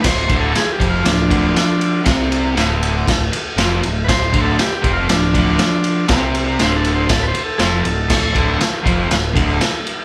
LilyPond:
<<
  \new Staff \with { instrumentName = "Transistor combo organ" } { \time 4/4 \key d \minor \tempo 4 = 119 \tuplet 3/2 { <b' c''>4 a'8 gis'8 g'8 f'8 } <f d'>2 | r1 | \tuplet 3/2 { <b' c''>4 a'8 g'8 g'8 f'8 } <f d'>2 | r4 \tuplet 3/2 { c''8 a'8 c''8 a'8 <b' c''>8 a'8 } <gis' a'>4~ |
<gis' a'>4 r2. | }
  \new Staff \with { instrumentName = "Overdriven electric guitar" } { \clef bass \time 4/4 \key d \minor d,8 <d, d>8 r8 <f, f>8 d,8 <d, d>8 r4 | <c c'>4 <d, d>4 d,8 r8 <f, f>8 d,8 | d,8 <d, d>8 r8 <f, f>8 d,8 <d, d>8 r4 | <c c'>4 <d, d>4 d,8 r8 <f, f>8 d,8 |
d,8 <d, d>8 r8 <f, f>8 d,8 <d, d>8 r4 | }
  \new Staff \with { instrumentName = "Picked electric bass" } { \clef bass \time 4/4 \key d \minor d,,8 d,,8 r8 f,,8 d,,8 d,,8 r4 | c,4 d,,4 d,,8 r8 f,,8 d,,8 | d,,8 d,,8 r8 f,,8 d,,8 d,,8 r4 | c,4 d,,4 d,,8 r8 f,,8 d,,8 |
d,,8 d,,8 r8 f,,8 d,,8 d,,8 r4 | }
  \new DrumStaff \with { instrumentName = "Drums" } \drummode { \time 4/4 <cymc bd sn>8 <bd cymr>8 <cymr sn>8 <bd cymr>8 <cymr sn>8 <bd cymr>8 <cymr sn>8 cymr8 | <bd cymr sn>8 cymr8 <cymr sn>8 cymr8 <bd cymr sn>8 cymr8 <cymr sn>8 cymr8 | <bd cymr sn>8 <bd cymr>8 <cymr sn>8 <bd cymr>8 <cymr sn>8 <bd cymr>8 <cymr sn>8 cymr8 | <bd cymr sn>8 cymr8 <cymr sn>8 cymr8 <bd cymr sn>8 cymr8 <cymr sn>8 cymr8 |
<cymc bd sn>8 <bd cymr>8 <cymr sn>8 <bd cymr>8 <cymr sn>8 <bd cymr>8 <cymr sn>8 cymr8 | }
>>